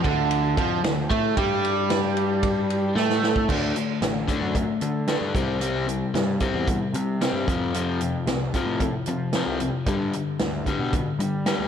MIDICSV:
0, 0, Header, 1, 4, 480
1, 0, Start_track
1, 0, Tempo, 530973
1, 1243, Time_signature, 4, 2, 24, 8
1, 10558, End_track
2, 0, Start_track
2, 0, Title_t, "Overdriven electric guitar"
2, 0, Program_c, 0, 29
2, 39, Note_on_c, 0, 50, 106
2, 514, Note_off_c, 0, 50, 0
2, 523, Note_on_c, 0, 53, 92
2, 756, Note_off_c, 0, 53, 0
2, 767, Note_on_c, 0, 50, 79
2, 957, Note_off_c, 0, 50, 0
2, 1002, Note_on_c, 0, 57, 101
2, 1235, Note_off_c, 0, 57, 0
2, 1251, Note_on_c, 0, 55, 101
2, 2675, Note_off_c, 0, 55, 0
2, 2679, Note_on_c, 0, 57, 100
2, 3153, Note_off_c, 0, 57, 0
2, 3153, Note_on_c, 0, 50, 76
2, 3164, Note_on_c, 0, 57, 78
2, 3171, Note_on_c, 0, 62, 88
2, 3382, Note_off_c, 0, 50, 0
2, 3388, Note_off_c, 0, 57, 0
2, 3392, Note_off_c, 0, 62, 0
2, 3403, Note_on_c, 0, 50, 59
2, 3403, Note_on_c, 0, 57, 64
2, 3618, Note_off_c, 0, 50, 0
2, 3618, Note_off_c, 0, 57, 0
2, 3643, Note_on_c, 0, 50, 66
2, 3647, Note_on_c, 0, 57, 67
2, 3855, Note_off_c, 0, 50, 0
2, 3860, Note_off_c, 0, 57, 0
2, 3866, Note_on_c, 0, 50, 77
2, 3876, Note_on_c, 0, 57, 84
2, 3884, Note_on_c, 0, 62, 84
2, 4100, Note_off_c, 0, 50, 0
2, 4105, Note_off_c, 0, 57, 0
2, 4109, Note_off_c, 0, 62, 0
2, 4123, Note_on_c, 0, 50, 71
2, 4126, Note_on_c, 0, 57, 75
2, 4338, Note_off_c, 0, 50, 0
2, 4340, Note_off_c, 0, 57, 0
2, 4357, Note_on_c, 0, 50, 57
2, 4358, Note_on_c, 0, 57, 67
2, 4576, Note_off_c, 0, 50, 0
2, 4576, Note_off_c, 0, 57, 0
2, 4596, Note_on_c, 0, 50, 91
2, 4601, Note_on_c, 0, 57, 93
2, 4604, Note_on_c, 0, 62, 96
2, 4825, Note_off_c, 0, 50, 0
2, 4828, Note_off_c, 0, 57, 0
2, 4829, Note_off_c, 0, 62, 0
2, 4833, Note_on_c, 0, 48, 89
2, 4840, Note_on_c, 0, 55, 98
2, 4845, Note_on_c, 0, 60, 93
2, 5060, Note_off_c, 0, 48, 0
2, 5066, Note_off_c, 0, 60, 0
2, 5067, Note_off_c, 0, 55, 0
2, 5071, Note_on_c, 0, 48, 76
2, 5077, Note_on_c, 0, 60, 82
2, 5078, Note_on_c, 0, 55, 78
2, 5301, Note_off_c, 0, 48, 0
2, 5306, Note_off_c, 0, 55, 0
2, 5306, Note_off_c, 0, 60, 0
2, 5311, Note_on_c, 0, 48, 57
2, 5316, Note_on_c, 0, 55, 68
2, 5534, Note_off_c, 0, 48, 0
2, 5536, Note_off_c, 0, 55, 0
2, 5552, Note_on_c, 0, 48, 61
2, 5555, Note_on_c, 0, 55, 72
2, 5774, Note_off_c, 0, 48, 0
2, 5775, Note_off_c, 0, 55, 0
2, 5793, Note_on_c, 0, 48, 83
2, 5799, Note_on_c, 0, 55, 91
2, 5802, Note_on_c, 0, 60, 103
2, 6024, Note_off_c, 0, 48, 0
2, 6027, Note_off_c, 0, 55, 0
2, 6029, Note_off_c, 0, 60, 0
2, 6039, Note_on_c, 0, 48, 77
2, 6042, Note_on_c, 0, 55, 79
2, 6258, Note_off_c, 0, 48, 0
2, 6259, Note_off_c, 0, 55, 0
2, 6286, Note_on_c, 0, 48, 64
2, 6291, Note_on_c, 0, 55, 60
2, 6501, Note_off_c, 0, 48, 0
2, 6504, Note_off_c, 0, 55, 0
2, 6522, Note_on_c, 0, 48, 85
2, 6525, Note_on_c, 0, 60, 99
2, 6526, Note_on_c, 0, 55, 102
2, 6749, Note_off_c, 0, 48, 0
2, 6751, Note_off_c, 0, 55, 0
2, 6751, Note_off_c, 0, 60, 0
2, 6759, Note_on_c, 0, 41, 84
2, 6762, Note_on_c, 0, 48, 92
2, 6771, Note_on_c, 0, 53, 90
2, 6986, Note_off_c, 0, 41, 0
2, 6990, Note_off_c, 0, 48, 0
2, 6994, Note_off_c, 0, 53, 0
2, 6997, Note_on_c, 0, 41, 83
2, 7006, Note_on_c, 0, 48, 88
2, 7006, Note_on_c, 0, 53, 89
2, 7227, Note_off_c, 0, 41, 0
2, 7232, Note_off_c, 0, 48, 0
2, 7232, Note_off_c, 0, 53, 0
2, 7244, Note_on_c, 0, 41, 57
2, 7249, Note_on_c, 0, 48, 68
2, 7461, Note_off_c, 0, 41, 0
2, 7464, Note_off_c, 0, 48, 0
2, 7485, Note_on_c, 0, 41, 61
2, 7492, Note_on_c, 0, 48, 74
2, 7702, Note_off_c, 0, 41, 0
2, 7705, Note_off_c, 0, 48, 0
2, 7726, Note_on_c, 0, 41, 77
2, 7735, Note_on_c, 0, 48, 88
2, 7739, Note_on_c, 0, 53, 95
2, 7952, Note_off_c, 0, 41, 0
2, 7957, Note_off_c, 0, 48, 0
2, 7959, Note_off_c, 0, 53, 0
2, 7968, Note_on_c, 0, 41, 66
2, 7975, Note_on_c, 0, 48, 82
2, 8183, Note_off_c, 0, 41, 0
2, 8187, Note_off_c, 0, 48, 0
2, 8209, Note_on_c, 0, 41, 55
2, 8217, Note_on_c, 0, 48, 70
2, 8424, Note_off_c, 0, 41, 0
2, 8428, Note_off_c, 0, 48, 0
2, 8454, Note_on_c, 0, 41, 83
2, 8461, Note_on_c, 0, 48, 93
2, 8463, Note_on_c, 0, 53, 95
2, 8677, Note_off_c, 0, 41, 0
2, 8680, Note_off_c, 0, 48, 0
2, 8681, Note_off_c, 0, 53, 0
2, 8689, Note_on_c, 0, 41, 64
2, 8693, Note_on_c, 0, 48, 74
2, 8905, Note_off_c, 0, 41, 0
2, 8907, Note_off_c, 0, 48, 0
2, 8928, Note_on_c, 0, 43, 82
2, 8929, Note_on_c, 0, 50, 88
2, 8937, Note_on_c, 0, 55, 97
2, 9154, Note_off_c, 0, 43, 0
2, 9154, Note_off_c, 0, 50, 0
2, 9158, Note_off_c, 0, 55, 0
2, 9173, Note_on_c, 0, 43, 57
2, 9174, Note_on_c, 0, 50, 69
2, 9387, Note_off_c, 0, 43, 0
2, 9387, Note_off_c, 0, 50, 0
2, 9406, Note_on_c, 0, 43, 66
2, 9407, Note_on_c, 0, 50, 71
2, 9624, Note_off_c, 0, 43, 0
2, 9624, Note_off_c, 0, 50, 0
2, 9650, Note_on_c, 0, 43, 81
2, 9650, Note_on_c, 0, 50, 87
2, 9663, Note_on_c, 0, 55, 91
2, 9875, Note_off_c, 0, 43, 0
2, 9875, Note_off_c, 0, 50, 0
2, 9881, Note_off_c, 0, 55, 0
2, 9899, Note_on_c, 0, 43, 75
2, 9902, Note_on_c, 0, 50, 79
2, 10110, Note_off_c, 0, 43, 0
2, 10112, Note_off_c, 0, 50, 0
2, 10127, Note_on_c, 0, 43, 63
2, 10131, Note_on_c, 0, 50, 66
2, 10344, Note_off_c, 0, 43, 0
2, 10346, Note_off_c, 0, 50, 0
2, 10361, Note_on_c, 0, 43, 81
2, 10369, Note_on_c, 0, 50, 89
2, 10375, Note_on_c, 0, 55, 94
2, 10558, Note_off_c, 0, 43, 0
2, 10558, Note_off_c, 0, 50, 0
2, 10558, Note_off_c, 0, 55, 0
2, 10558, End_track
3, 0, Start_track
3, 0, Title_t, "Picked electric bass"
3, 0, Program_c, 1, 34
3, 41, Note_on_c, 1, 38, 88
3, 489, Note_off_c, 1, 38, 0
3, 516, Note_on_c, 1, 41, 89
3, 742, Note_off_c, 1, 41, 0
3, 747, Note_on_c, 1, 38, 77
3, 977, Note_off_c, 1, 38, 0
3, 998, Note_on_c, 1, 45, 98
3, 1223, Note_off_c, 1, 45, 0
3, 1234, Note_on_c, 1, 43, 92
3, 2641, Note_off_c, 1, 43, 0
3, 2672, Note_on_c, 1, 45, 91
3, 3123, Note_off_c, 1, 45, 0
3, 3154, Note_on_c, 1, 38, 86
3, 3354, Note_off_c, 1, 38, 0
3, 3631, Note_on_c, 1, 33, 87
3, 3833, Note_off_c, 1, 33, 0
3, 3988, Note_on_c, 1, 42, 70
3, 4191, Note_off_c, 1, 42, 0
3, 4353, Note_on_c, 1, 50, 71
3, 4653, Note_off_c, 1, 50, 0
3, 4711, Note_on_c, 1, 43, 66
3, 4815, Note_off_c, 1, 43, 0
3, 4832, Note_on_c, 1, 36, 97
3, 5430, Note_off_c, 1, 36, 0
3, 5550, Note_on_c, 1, 43, 87
3, 5754, Note_off_c, 1, 43, 0
3, 5910, Note_on_c, 1, 40, 82
3, 6113, Note_off_c, 1, 40, 0
3, 6269, Note_on_c, 1, 48, 80
3, 6572, Note_off_c, 1, 48, 0
3, 6625, Note_on_c, 1, 43, 78
3, 6732, Note_off_c, 1, 43, 0
3, 6760, Note_on_c, 1, 41, 92
3, 7356, Note_off_c, 1, 41, 0
3, 7472, Note_on_c, 1, 36, 93
3, 7676, Note_off_c, 1, 36, 0
3, 7829, Note_on_c, 1, 45, 80
3, 8034, Note_off_c, 1, 45, 0
3, 8203, Note_on_c, 1, 53, 83
3, 8502, Note_off_c, 1, 53, 0
3, 8557, Note_on_c, 1, 36, 68
3, 8759, Note_off_c, 1, 36, 0
3, 8915, Note_on_c, 1, 43, 93
3, 9118, Note_off_c, 1, 43, 0
3, 9407, Note_on_c, 1, 38, 87
3, 9605, Note_off_c, 1, 38, 0
3, 9757, Note_on_c, 1, 47, 77
3, 9959, Note_off_c, 1, 47, 0
3, 10114, Note_on_c, 1, 55, 79
3, 10417, Note_off_c, 1, 55, 0
3, 10479, Note_on_c, 1, 38, 69
3, 10558, Note_off_c, 1, 38, 0
3, 10558, End_track
4, 0, Start_track
4, 0, Title_t, "Drums"
4, 40, Note_on_c, 9, 36, 98
4, 43, Note_on_c, 9, 51, 65
4, 131, Note_off_c, 9, 36, 0
4, 133, Note_off_c, 9, 51, 0
4, 277, Note_on_c, 9, 51, 89
4, 368, Note_off_c, 9, 51, 0
4, 519, Note_on_c, 9, 36, 108
4, 525, Note_on_c, 9, 51, 67
4, 610, Note_off_c, 9, 36, 0
4, 615, Note_off_c, 9, 51, 0
4, 762, Note_on_c, 9, 51, 83
4, 763, Note_on_c, 9, 38, 107
4, 852, Note_off_c, 9, 51, 0
4, 854, Note_off_c, 9, 38, 0
4, 999, Note_on_c, 9, 36, 104
4, 1005, Note_on_c, 9, 51, 65
4, 1089, Note_off_c, 9, 36, 0
4, 1096, Note_off_c, 9, 51, 0
4, 1238, Note_on_c, 9, 51, 85
4, 1239, Note_on_c, 9, 36, 108
4, 1329, Note_off_c, 9, 36, 0
4, 1329, Note_off_c, 9, 51, 0
4, 1487, Note_on_c, 9, 51, 61
4, 1578, Note_off_c, 9, 51, 0
4, 1718, Note_on_c, 9, 51, 79
4, 1720, Note_on_c, 9, 38, 102
4, 1808, Note_off_c, 9, 51, 0
4, 1810, Note_off_c, 9, 38, 0
4, 1959, Note_on_c, 9, 51, 63
4, 2049, Note_off_c, 9, 51, 0
4, 2195, Note_on_c, 9, 51, 88
4, 2196, Note_on_c, 9, 36, 93
4, 2285, Note_off_c, 9, 51, 0
4, 2287, Note_off_c, 9, 36, 0
4, 2443, Note_on_c, 9, 51, 69
4, 2533, Note_off_c, 9, 51, 0
4, 2682, Note_on_c, 9, 38, 60
4, 2773, Note_off_c, 9, 38, 0
4, 2799, Note_on_c, 9, 38, 59
4, 2889, Note_off_c, 9, 38, 0
4, 2922, Note_on_c, 9, 38, 79
4, 3012, Note_off_c, 9, 38, 0
4, 3036, Note_on_c, 9, 36, 95
4, 3126, Note_off_c, 9, 36, 0
4, 3155, Note_on_c, 9, 36, 109
4, 3161, Note_on_c, 9, 49, 94
4, 3246, Note_off_c, 9, 36, 0
4, 3252, Note_off_c, 9, 49, 0
4, 3397, Note_on_c, 9, 42, 60
4, 3487, Note_off_c, 9, 42, 0
4, 3634, Note_on_c, 9, 42, 84
4, 3635, Note_on_c, 9, 38, 100
4, 3724, Note_off_c, 9, 42, 0
4, 3726, Note_off_c, 9, 38, 0
4, 3872, Note_on_c, 9, 36, 71
4, 3875, Note_on_c, 9, 42, 60
4, 3962, Note_off_c, 9, 36, 0
4, 3965, Note_off_c, 9, 42, 0
4, 4113, Note_on_c, 9, 36, 92
4, 4115, Note_on_c, 9, 42, 70
4, 4203, Note_off_c, 9, 36, 0
4, 4206, Note_off_c, 9, 42, 0
4, 4348, Note_on_c, 9, 42, 60
4, 4439, Note_off_c, 9, 42, 0
4, 4587, Note_on_c, 9, 42, 74
4, 4589, Note_on_c, 9, 38, 95
4, 4678, Note_off_c, 9, 42, 0
4, 4679, Note_off_c, 9, 38, 0
4, 4833, Note_on_c, 9, 36, 94
4, 4840, Note_on_c, 9, 42, 57
4, 4923, Note_off_c, 9, 36, 0
4, 4931, Note_off_c, 9, 42, 0
4, 5072, Note_on_c, 9, 42, 79
4, 5162, Note_off_c, 9, 42, 0
4, 5321, Note_on_c, 9, 42, 56
4, 5411, Note_off_c, 9, 42, 0
4, 5560, Note_on_c, 9, 42, 74
4, 5562, Note_on_c, 9, 38, 100
4, 5650, Note_off_c, 9, 42, 0
4, 5652, Note_off_c, 9, 38, 0
4, 5787, Note_on_c, 9, 42, 57
4, 5792, Note_on_c, 9, 36, 82
4, 5877, Note_off_c, 9, 42, 0
4, 5883, Note_off_c, 9, 36, 0
4, 6034, Note_on_c, 9, 36, 99
4, 6034, Note_on_c, 9, 42, 77
4, 6124, Note_off_c, 9, 36, 0
4, 6125, Note_off_c, 9, 42, 0
4, 6275, Note_on_c, 9, 42, 60
4, 6365, Note_off_c, 9, 42, 0
4, 6521, Note_on_c, 9, 42, 82
4, 6523, Note_on_c, 9, 38, 96
4, 6611, Note_off_c, 9, 42, 0
4, 6613, Note_off_c, 9, 38, 0
4, 6761, Note_on_c, 9, 36, 97
4, 6770, Note_on_c, 9, 42, 59
4, 6851, Note_off_c, 9, 36, 0
4, 6860, Note_off_c, 9, 42, 0
4, 7000, Note_on_c, 9, 42, 90
4, 7090, Note_off_c, 9, 42, 0
4, 7236, Note_on_c, 9, 42, 62
4, 7327, Note_off_c, 9, 42, 0
4, 7477, Note_on_c, 9, 42, 78
4, 7479, Note_on_c, 9, 38, 108
4, 7567, Note_off_c, 9, 42, 0
4, 7569, Note_off_c, 9, 38, 0
4, 7716, Note_on_c, 9, 42, 62
4, 7719, Note_on_c, 9, 36, 72
4, 7807, Note_off_c, 9, 42, 0
4, 7809, Note_off_c, 9, 36, 0
4, 7956, Note_on_c, 9, 42, 78
4, 7958, Note_on_c, 9, 36, 87
4, 8047, Note_off_c, 9, 42, 0
4, 8048, Note_off_c, 9, 36, 0
4, 8188, Note_on_c, 9, 42, 66
4, 8279, Note_off_c, 9, 42, 0
4, 8431, Note_on_c, 9, 42, 79
4, 8433, Note_on_c, 9, 38, 95
4, 8521, Note_off_c, 9, 42, 0
4, 8523, Note_off_c, 9, 38, 0
4, 8679, Note_on_c, 9, 42, 57
4, 8769, Note_off_c, 9, 42, 0
4, 8916, Note_on_c, 9, 42, 77
4, 8919, Note_on_c, 9, 36, 100
4, 9006, Note_off_c, 9, 42, 0
4, 9009, Note_off_c, 9, 36, 0
4, 9160, Note_on_c, 9, 42, 56
4, 9250, Note_off_c, 9, 42, 0
4, 9395, Note_on_c, 9, 42, 75
4, 9397, Note_on_c, 9, 38, 107
4, 9486, Note_off_c, 9, 42, 0
4, 9488, Note_off_c, 9, 38, 0
4, 9640, Note_on_c, 9, 36, 74
4, 9640, Note_on_c, 9, 42, 54
4, 9730, Note_off_c, 9, 36, 0
4, 9731, Note_off_c, 9, 42, 0
4, 9880, Note_on_c, 9, 42, 74
4, 9881, Note_on_c, 9, 36, 102
4, 9971, Note_off_c, 9, 42, 0
4, 9972, Note_off_c, 9, 36, 0
4, 10125, Note_on_c, 9, 42, 60
4, 10216, Note_off_c, 9, 42, 0
4, 10359, Note_on_c, 9, 42, 74
4, 10361, Note_on_c, 9, 38, 100
4, 10450, Note_off_c, 9, 42, 0
4, 10452, Note_off_c, 9, 38, 0
4, 10558, End_track
0, 0, End_of_file